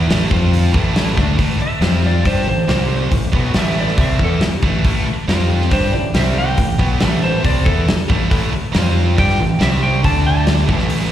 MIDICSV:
0, 0, Header, 1, 8, 480
1, 0, Start_track
1, 0, Key_signature, 0, "minor"
1, 0, Tempo, 432277
1, 1548, Time_signature, 4, 2, 24, 8
1, 12347, End_track
2, 0, Start_track
2, 0, Title_t, "Electric slide guitar"
2, 0, Program_c, 0, 29
2, 1797, Note_on_c, 0, 76, 83
2, 2259, Note_off_c, 0, 76, 0
2, 2292, Note_on_c, 0, 74, 77
2, 2513, Note_off_c, 0, 74, 0
2, 2517, Note_on_c, 0, 72, 84
2, 2746, Note_off_c, 0, 72, 0
2, 2763, Note_on_c, 0, 72, 90
2, 3689, Note_off_c, 0, 72, 0
2, 3982, Note_on_c, 0, 76, 91
2, 4200, Note_off_c, 0, 76, 0
2, 4223, Note_on_c, 0, 74, 79
2, 4440, Note_off_c, 0, 74, 0
2, 4454, Note_on_c, 0, 76, 86
2, 4676, Note_off_c, 0, 76, 0
2, 4711, Note_on_c, 0, 69, 92
2, 4925, Note_off_c, 0, 69, 0
2, 6363, Note_on_c, 0, 72, 99
2, 6589, Note_on_c, 0, 74, 84
2, 6590, Note_off_c, 0, 72, 0
2, 6823, Note_off_c, 0, 74, 0
2, 6844, Note_on_c, 0, 76, 92
2, 7070, Note_off_c, 0, 76, 0
2, 7086, Note_on_c, 0, 79, 90
2, 7777, Note_off_c, 0, 79, 0
2, 7778, Note_on_c, 0, 76, 83
2, 8017, Note_off_c, 0, 76, 0
2, 8033, Note_on_c, 0, 72, 89
2, 8264, Note_off_c, 0, 72, 0
2, 8275, Note_on_c, 0, 74, 92
2, 8495, Note_on_c, 0, 69, 85
2, 8505, Note_off_c, 0, 74, 0
2, 9898, Note_off_c, 0, 69, 0
2, 10206, Note_on_c, 0, 79, 100
2, 10663, Note_off_c, 0, 79, 0
2, 10680, Note_on_c, 0, 76, 95
2, 10907, Note_off_c, 0, 76, 0
2, 10912, Note_on_c, 0, 79, 89
2, 11143, Note_off_c, 0, 79, 0
2, 11158, Note_on_c, 0, 81, 98
2, 11386, Note_off_c, 0, 81, 0
2, 11399, Note_on_c, 0, 81, 97
2, 11859, Note_off_c, 0, 81, 0
2, 12347, End_track
3, 0, Start_track
3, 0, Title_t, "Overdriven electric guitar"
3, 0, Program_c, 1, 29
3, 86, Note_on_c, 1, 45, 93
3, 90, Note_on_c, 1, 52, 98
3, 94, Note_on_c, 1, 57, 110
3, 330, Note_off_c, 1, 45, 0
3, 331, Note_off_c, 1, 52, 0
3, 333, Note_off_c, 1, 57, 0
3, 338, Note_on_c, 1, 53, 86
3, 342, Note_on_c, 1, 60, 88
3, 356, Note_on_c, 1, 65, 94
3, 811, Note_off_c, 1, 53, 0
3, 815, Note_on_c, 1, 45, 84
3, 816, Note_off_c, 1, 60, 0
3, 821, Note_on_c, 1, 52, 87
3, 823, Note_off_c, 1, 65, 0
3, 827, Note_on_c, 1, 57, 94
3, 1286, Note_off_c, 1, 57, 0
3, 1292, Note_off_c, 1, 45, 0
3, 1295, Note_off_c, 1, 52, 0
3, 1297, Note_on_c, 1, 50, 89
3, 1300, Note_on_c, 1, 57, 90
3, 1307, Note_on_c, 1, 62, 89
3, 1527, Note_off_c, 1, 50, 0
3, 1529, Note_off_c, 1, 57, 0
3, 1532, Note_on_c, 1, 45, 92
3, 1536, Note_on_c, 1, 52, 89
3, 1538, Note_off_c, 1, 62, 0
3, 1542, Note_on_c, 1, 57, 101
3, 1766, Note_off_c, 1, 45, 0
3, 1775, Note_off_c, 1, 52, 0
3, 1778, Note_off_c, 1, 57, 0
3, 2012, Note_on_c, 1, 53, 99
3, 2014, Note_on_c, 1, 60, 96
3, 2021, Note_on_c, 1, 65, 100
3, 2494, Note_off_c, 1, 53, 0
3, 2495, Note_off_c, 1, 60, 0
3, 2498, Note_off_c, 1, 65, 0
3, 2499, Note_on_c, 1, 55, 89
3, 2503, Note_on_c, 1, 62, 91
3, 2509, Note_on_c, 1, 67, 91
3, 2737, Note_off_c, 1, 55, 0
3, 2739, Note_off_c, 1, 62, 0
3, 2742, Note_off_c, 1, 67, 0
3, 2749, Note_on_c, 1, 45, 61
3, 2750, Note_on_c, 1, 52, 74
3, 2941, Note_off_c, 1, 45, 0
3, 2942, Note_off_c, 1, 52, 0
3, 2969, Note_on_c, 1, 48, 83
3, 2977, Note_on_c, 1, 55, 104
3, 2985, Note_on_c, 1, 60, 100
3, 3453, Note_off_c, 1, 48, 0
3, 3457, Note_off_c, 1, 55, 0
3, 3461, Note_off_c, 1, 60, 0
3, 3462, Note_on_c, 1, 45, 60
3, 3467, Note_on_c, 1, 52, 70
3, 3658, Note_off_c, 1, 45, 0
3, 3661, Note_off_c, 1, 52, 0
3, 3700, Note_on_c, 1, 47, 83
3, 3703, Note_on_c, 1, 54, 88
3, 3705, Note_on_c, 1, 59, 88
3, 3918, Note_off_c, 1, 47, 0
3, 3923, Note_on_c, 1, 45, 102
3, 3926, Note_off_c, 1, 54, 0
3, 3930, Note_off_c, 1, 59, 0
3, 3930, Note_on_c, 1, 52, 101
3, 3935, Note_on_c, 1, 57, 98
3, 4410, Note_off_c, 1, 45, 0
3, 4413, Note_off_c, 1, 52, 0
3, 4416, Note_off_c, 1, 57, 0
3, 4417, Note_on_c, 1, 48, 89
3, 4418, Note_on_c, 1, 55, 93
3, 4422, Note_on_c, 1, 60, 97
3, 4652, Note_off_c, 1, 48, 0
3, 4656, Note_on_c, 1, 52, 84
3, 4657, Note_off_c, 1, 55, 0
3, 4660, Note_off_c, 1, 60, 0
3, 4663, Note_on_c, 1, 59, 95
3, 4666, Note_on_c, 1, 64, 95
3, 4897, Note_off_c, 1, 52, 0
3, 4900, Note_off_c, 1, 59, 0
3, 4901, Note_off_c, 1, 64, 0
3, 5145, Note_on_c, 1, 45, 85
3, 5148, Note_on_c, 1, 52, 87
3, 5149, Note_on_c, 1, 57, 101
3, 5372, Note_off_c, 1, 45, 0
3, 5379, Note_off_c, 1, 52, 0
3, 5383, Note_off_c, 1, 57, 0
3, 5385, Note_on_c, 1, 45, 88
3, 5393, Note_on_c, 1, 52, 94
3, 5395, Note_on_c, 1, 57, 103
3, 5618, Note_off_c, 1, 45, 0
3, 5625, Note_off_c, 1, 52, 0
3, 5626, Note_off_c, 1, 57, 0
3, 5865, Note_on_c, 1, 53, 105
3, 5868, Note_on_c, 1, 60, 98
3, 5872, Note_on_c, 1, 65, 96
3, 6330, Note_off_c, 1, 60, 0
3, 6334, Note_off_c, 1, 65, 0
3, 6334, Note_on_c, 1, 55, 78
3, 6339, Note_on_c, 1, 62, 84
3, 6341, Note_off_c, 1, 53, 0
3, 6348, Note_on_c, 1, 67, 95
3, 6575, Note_off_c, 1, 55, 0
3, 6578, Note_off_c, 1, 62, 0
3, 6582, Note_off_c, 1, 67, 0
3, 6583, Note_on_c, 1, 52, 70
3, 6587, Note_on_c, 1, 45, 62
3, 6779, Note_off_c, 1, 52, 0
3, 6781, Note_off_c, 1, 45, 0
3, 6814, Note_on_c, 1, 48, 86
3, 6825, Note_on_c, 1, 60, 99
3, 6826, Note_on_c, 1, 55, 90
3, 7290, Note_off_c, 1, 48, 0
3, 7294, Note_on_c, 1, 45, 60
3, 7296, Note_off_c, 1, 55, 0
3, 7301, Note_off_c, 1, 60, 0
3, 7301, Note_on_c, 1, 52, 61
3, 7495, Note_off_c, 1, 45, 0
3, 7498, Note_off_c, 1, 52, 0
3, 7535, Note_on_c, 1, 47, 89
3, 7546, Note_on_c, 1, 54, 85
3, 7550, Note_on_c, 1, 59, 91
3, 7765, Note_off_c, 1, 47, 0
3, 7769, Note_on_c, 1, 45, 82
3, 7770, Note_off_c, 1, 54, 0
3, 7775, Note_on_c, 1, 52, 95
3, 7780, Note_off_c, 1, 59, 0
3, 7784, Note_on_c, 1, 57, 102
3, 8235, Note_off_c, 1, 45, 0
3, 8240, Note_on_c, 1, 48, 80
3, 8245, Note_off_c, 1, 57, 0
3, 8246, Note_off_c, 1, 52, 0
3, 8249, Note_on_c, 1, 60, 91
3, 8250, Note_on_c, 1, 55, 88
3, 8486, Note_off_c, 1, 55, 0
3, 8487, Note_off_c, 1, 48, 0
3, 8491, Note_on_c, 1, 59, 87
3, 8492, Note_off_c, 1, 60, 0
3, 8492, Note_on_c, 1, 52, 83
3, 8504, Note_on_c, 1, 64, 99
3, 8727, Note_off_c, 1, 52, 0
3, 8733, Note_off_c, 1, 59, 0
3, 8740, Note_off_c, 1, 64, 0
3, 8977, Note_on_c, 1, 45, 85
3, 8982, Note_on_c, 1, 52, 90
3, 8984, Note_on_c, 1, 57, 93
3, 9213, Note_off_c, 1, 45, 0
3, 9219, Note_off_c, 1, 52, 0
3, 9219, Note_off_c, 1, 57, 0
3, 9226, Note_on_c, 1, 45, 90
3, 9231, Note_on_c, 1, 52, 97
3, 9234, Note_on_c, 1, 57, 97
3, 9453, Note_off_c, 1, 45, 0
3, 9463, Note_off_c, 1, 52, 0
3, 9464, Note_off_c, 1, 57, 0
3, 9701, Note_on_c, 1, 53, 88
3, 9716, Note_on_c, 1, 60, 96
3, 9716, Note_on_c, 1, 65, 106
3, 10173, Note_off_c, 1, 60, 0
3, 10178, Note_off_c, 1, 53, 0
3, 10178, Note_on_c, 1, 55, 82
3, 10183, Note_off_c, 1, 65, 0
3, 10188, Note_on_c, 1, 62, 93
3, 10188, Note_on_c, 1, 67, 84
3, 10416, Note_off_c, 1, 55, 0
3, 10421, Note_off_c, 1, 62, 0
3, 10421, Note_off_c, 1, 67, 0
3, 10429, Note_on_c, 1, 45, 58
3, 10433, Note_on_c, 1, 52, 68
3, 10621, Note_off_c, 1, 45, 0
3, 10623, Note_off_c, 1, 52, 0
3, 10663, Note_on_c, 1, 48, 87
3, 10670, Note_on_c, 1, 55, 91
3, 10674, Note_on_c, 1, 60, 100
3, 11139, Note_off_c, 1, 48, 0
3, 11142, Note_off_c, 1, 55, 0
3, 11144, Note_off_c, 1, 60, 0
3, 11151, Note_on_c, 1, 50, 95
3, 11158, Note_on_c, 1, 62, 101
3, 11160, Note_on_c, 1, 57, 105
3, 11863, Note_off_c, 1, 50, 0
3, 11866, Note_off_c, 1, 62, 0
3, 11867, Note_off_c, 1, 57, 0
3, 11871, Note_on_c, 1, 45, 80
3, 11872, Note_on_c, 1, 52, 93
3, 11882, Note_on_c, 1, 57, 98
3, 12347, Note_off_c, 1, 45, 0
3, 12347, Note_off_c, 1, 52, 0
3, 12347, Note_off_c, 1, 57, 0
3, 12347, End_track
4, 0, Start_track
4, 0, Title_t, "Fingered electric bass"
4, 0, Program_c, 2, 33
4, 107, Note_on_c, 2, 33, 95
4, 330, Note_off_c, 2, 33, 0
4, 353, Note_on_c, 2, 41, 87
4, 797, Note_off_c, 2, 41, 0
4, 828, Note_on_c, 2, 33, 91
4, 1275, Note_off_c, 2, 33, 0
4, 1306, Note_on_c, 2, 38, 93
4, 1530, Note_off_c, 2, 38, 0
4, 1548, Note_on_c, 2, 33, 84
4, 1772, Note_off_c, 2, 33, 0
4, 2008, Note_on_c, 2, 41, 86
4, 2465, Note_off_c, 2, 41, 0
4, 2507, Note_on_c, 2, 43, 92
4, 2724, Note_off_c, 2, 43, 0
4, 2730, Note_on_c, 2, 33, 75
4, 2963, Note_off_c, 2, 33, 0
4, 2973, Note_on_c, 2, 36, 96
4, 3428, Note_off_c, 2, 36, 0
4, 3463, Note_on_c, 2, 33, 68
4, 3690, Note_off_c, 2, 33, 0
4, 3708, Note_on_c, 2, 35, 85
4, 3926, Note_off_c, 2, 35, 0
4, 3932, Note_on_c, 2, 33, 92
4, 4388, Note_off_c, 2, 33, 0
4, 4428, Note_on_c, 2, 36, 91
4, 4653, Note_off_c, 2, 36, 0
4, 4663, Note_on_c, 2, 40, 85
4, 4890, Note_off_c, 2, 40, 0
4, 5143, Note_on_c, 2, 33, 91
4, 5370, Note_off_c, 2, 33, 0
4, 5385, Note_on_c, 2, 33, 88
4, 5611, Note_off_c, 2, 33, 0
4, 5864, Note_on_c, 2, 41, 98
4, 6314, Note_off_c, 2, 41, 0
4, 6347, Note_on_c, 2, 43, 94
4, 6572, Note_off_c, 2, 43, 0
4, 6582, Note_on_c, 2, 33, 77
4, 6809, Note_off_c, 2, 33, 0
4, 6833, Note_on_c, 2, 36, 87
4, 7278, Note_off_c, 2, 36, 0
4, 7313, Note_on_c, 2, 33, 74
4, 7535, Note_off_c, 2, 33, 0
4, 7540, Note_on_c, 2, 35, 89
4, 7768, Note_off_c, 2, 35, 0
4, 7790, Note_on_c, 2, 33, 91
4, 8237, Note_off_c, 2, 33, 0
4, 8270, Note_on_c, 2, 36, 87
4, 8493, Note_off_c, 2, 36, 0
4, 8517, Note_on_c, 2, 40, 93
4, 8737, Note_off_c, 2, 40, 0
4, 8992, Note_on_c, 2, 33, 93
4, 9214, Note_off_c, 2, 33, 0
4, 9236, Note_on_c, 2, 33, 86
4, 9456, Note_off_c, 2, 33, 0
4, 9723, Note_on_c, 2, 41, 90
4, 10163, Note_off_c, 2, 41, 0
4, 10202, Note_on_c, 2, 43, 94
4, 10419, Note_off_c, 2, 43, 0
4, 10447, Note_on_c, 2, 33, 75
4, 10662, Note_off_c, 2, 33, 0
4, 10668, Note_on_c, 2, 36, 95
4, 11115, Note_off_c, 2, 36, 0
4, 11160, Note_on_c, 2, 38, 85
4, 11830, Note_off_c, 2, 38, 0
4, 11869, Note_on_c, 2, 33, 100
4, 12347, Note_off_c, 2, 33, 0
4, 12347, End_track
5, 0, Start_track
5, 0, Title_t, "Muted distorted electric guitar strokes"
5, 1780, Note_on_c, 9, 29, 55
5, 1891, Note_off_c, 9, 29, 0
5, 4903, Note_on_c, 9, 29, 58
5, 5014, Note_off_c, 9, 29, 0
5, 5624, Note_on_c, 9, 29, 57
5, 5735, Note_off_c, 9, 29, 0
5, 8746, Note_on_c, 9, 29, 56
5, 8857, Note_off_c, 9, 29, 0
5, 9465, Note_on_c, 9, 29, 57
5, 9576, Note_off_c, 9, 29, 0
5, 12347, End_track
6, 0, Start_track
6, 0, Title_t, "Muted fingered electric bass strokes"
6, 1777, Note_on_c, 9, 29, 41
6, 1888, Note_off_c, 9, 29, 0
6, 4901, Note_on_c, 9, 29, 40
6, 5012, Note_off_c, 9, 29, 0
6, 5619, Note_on_c, 9, 29, 39
6, 5730, Note_off_c, 9, 29, 0
6, 8776, Note_on_c, 9, 29, 38
6, 8887, Note_off_c, 9, 29, 0
6, 9506, Note_on_c, 9, 29, 38
6, 9617, Note_off_c, 9, 29, 0
6, 12347, End_track
7, 0, Start_track
7, 0, Title_t, "Muted overdriven electric guitar strokes"
7, 1779, Note_on_c, 9, 29, 52
7, 1890, Note_off_c, 9, 29, 0
7, 4910, Note_on_c, 9, 29, 60
7, 5021, Note_off_c, 9, 29, 0
7, 5631, Note_on_c, 9, 29, 59
7, 5742, Note_off_c, 9, 29, 0
7, 8732, Note_on_c, 9, 29, 60
7, 8843, Note_off_c, 9, 29, 0
7, 9467, Note_on_c, 9, 29, 54
7, 9578, Note_off_c, 9, 29, 0
7, 12347, End_track
8, 0, Start_track
8, 0, Title_t, "Drums"
8, 113, Note_on_c, 9, 46, 61
8, 118, Note_on_c, 9, 38, 109
8, 224, Note_off_c, 9, 46, 0
8, 229, Note_off_c, 9, 38, 0
8, 345, Note_on_c, 9, 36, 104
8, 456, Note_off_c, 9, 36, 0
8, 591, Note_on_c, 9, 46, 61
8, 702, Note_off_c, 9, 46, 0
8, 825, Note_on_c, 9, 36, 104
8, 936, Note_off_c, 9, 36, 0
8, 1064, Note_on_c, 9, 46, 61
8, 1068, Note_on_c, 9, 38, 105
8, 1175, Note_off_c, 9, 46, 0
8, 1179, Note_off_c, 9, 38, 0
8, 1304, Note_on_c, 9, 36, 94
8, 1313, Note_on_c, 9, 38, 31
8, 1415, Note_off_c, 9, 36, 0
8, 1424, Note_off_c, 9, 38, 0
8, 1539, Note_on_c, 9, 46, 53
8, 1542, Note_on_c, 9, 36, 101
8, 1650, Note_off_c, 9, 46, 0
8, 1653, Note_off_c, 9, 36, 0
8, 2019, Note_on_c, 9, 46, 51
8, 2024, Note_on_c, 9, 38, 96
8, 2130, Note_off_c, 9, 46, 0
8, 2135, Note_off_c, 9, 38, 0
8, 2500, Note_on_c, 9, 46, 57
8, 2504, Note_on_c, 9, 36, 103
8, 2611, Note_off_c, 9, 46, 0
8, 2615, Note_off_c, 9, 36, 0
8, 2984, Note_on_c, 9, 46, 51
8, 2989, Note_on_c, 9, 38, 113
8, 3095, Note_off_c, 9, 46, 0
8, 3100, Note_off_c, 9, 38, 0
8, 3460, Note_on_c, 9, 46, 58
8, 3461, Note_on_c, 9, 36, 82
8, 3571, Note_off_c, 9, 46, 0
8, 3572, Note_off_c, 9, 36, 0
8, 3700, Note_on_c, 9, 36, 97
8, 3811, Note_off_c, 9, 36, 0
8, 3931, Note_on_c, 9, 46, 60
8, 3935, Note_on_c, 9, 38, 107
8, 4042, Note_off_c, 9, 46, 0
8, 4047, Note_off_c, 9, 38, 0
8, 4307, Note_on_c, 9, 38, 30
8, 4417, Note_on_c, 9, 46, 59
8, 4418, Note_off_c, 9, 38, 0
8, 4418, Note_on_c, 9, 36, 115
8, 4528, Note_off_c, 9, 46, 0
8, 4529, Note_off_c, 9, 36, 0
8, 4657, Note_on_c, 9, 36, 97
8, 4768, Note_off_c, 9, 36, 0
8, 4894, Note_on_c, 9, 46, 54
8, 4899, Note_on_c, 9, 38, 109
8, 5005, Note_off_c, 9, 46, 0
8, 5010, Note_off_c, 9, 38, 0
8, 5137, Note_on_c, 9, 36, 101
8, 5248, Note_off_c, 9, 36, 0
8, 5376, Note_on_c, 9, 46, 52
8, 5382, Note_on_c, 9, 36, 98
8, 5487, Note_off_c, 9, 46, 0
8, 5493, Note_off_c, 9, 36, 0
8, 5872, Note_on_c, 9, 46, 53
8, 5877, Note_on_c, 9, 38, 102
8, 5983, Note_off_c, 9, 46, 0
8, 5988, Note_off_c, 9, 38, 0
8, 6233, Note_on_c, 9, 38, 31
8, 6344, Note_off_c, 9, 38, 0
8, 6344, Note_on_c, 9, 46, 56
8, 6345, Note_on_c, 9, 36, 101
8, 6455, Note_off_c, 9, 46, 0
8, 6457, Note_off_c, 9, 36, 0
8, 6822, Note_on_c, 9, 46, 57
8, 6826, Note_on_c, 9, 38, 115
8, 6933, Note_off_c, 9, 46, 0
8, 6937, Note_off_c, 9, 38, 0
8, 7300, Note_on_c, 9, 46, 55
8, 7305, Note_on_c, 9, 36, 81
8, 7411, Note_off_c, 9, 46, 0
8, 7416, Note_off_c, 9, 36, 0
8, 7543, Note_on_c, 9, 36, 98
8, 7654, Note_off_c, 9, 36, 0
8, 7775, Note_on_c, 9, 46, 55
8, 7779, Note_on_c, 9, 38, 107
8, 7886, Note_off_c, 9, 46, 0
8, 7890, Note_off_c, 9, 38, 0
8, 8267, Note_on_c, 9, 36, 110
8, 8268, Note_on_c, 9, 46, 61
8, 8378, Note_off_c, 9, 36, 0
8, 8379, Note_off_c, 9, 46, 0
8, 8508, Note_on_c, 9, 36, 104
8, 8619, Note_off_c, 9, 36, 0
8, 8752, Note_on_c, 9, 46, 57
8, 8756, Note_on_c, 9, 38, 109
8, 8863, Note_off_c, 9, 46, 0
8, 8867, Note_off_c, 9, 38, 0
8, 8991, Note_on_c, 9, 36, 98
8, 9102, Note_off_c, 9, 36, 0
8, 9231, Note_on_c, 9, 36, 101
8, 9233, Note_on_c, 9, 46, 53
8, 9342, Note_off_c, 9, 36, 0
8, 9344, Note_off_c, 9, 46, 0
8, 9708, Note_on_c, 9, 46, 52
8, 9712, Note_on_c, 9, 38, 105
8, 9819, Note_off_c, 9, 46, 0
8, 9823, Note_off_c, 9, 38, 0
8, 10197, Note_on_c, 9, 36, 112
8, 10200, Note_on_c, 9, 46, 56
8, 10308, Note_off_c, 9, 36, 0
8, 10311, Note_off_c, 9, 46, 0
8, 10324, Note_on_c, 9, 38, 30
8, 10435, Note_off_c, 9, 38, 0
8, 10666, Note_on_c, 9, 46, 55
8, 10670, Note_on_c, 9, 38, 107
8, 10777, Note_off_c, 9, 46, 0
8, 10781, Note_off_c, 9, 38, 0
8, 11151, Note_on_c, 9, 46, 50
8, 11152, Note_on_c, 9, 36, 97
8, 11262, Note_off_c, 9, 46, 0
8, 11263, Note_off_c, 9, 36, 0
8, 11622, Note_on_c, 9, 46, 56
8, 11627, Note_on_c, 9, 38, 100
8, 11733, Note_off_c, 9, 46, 0
8, 11738, Note_off_c, 9, 38, 0
8, 11868, Note_on_c, 9, 36, 104
8, 11979, Note_off_c, 9, 36, 0
8, 11981, Note_on_c, 9, 38, 34
8, 12092, Note_off_c, 9, 38, 0
8, 12099, Note_on_c, 9, 46, 58
8, 12210, Note_off_c, 9, 46, 0
8, 12217, Note_on_c, 9, 38, 31
8, 12328, Note_off_c, 9, 38, 0
8, 12347, End_track
0, 0, End_of_file